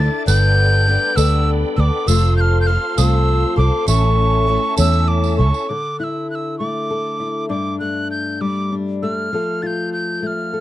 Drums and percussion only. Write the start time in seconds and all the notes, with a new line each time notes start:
0.28 tambourine
1.18 tambourine
2.08 tambourine
2.98 tambourine
3.88 tambourine
4.77 tambourine
4.93 tambourine
5.24 tambourine
5.54 tambourine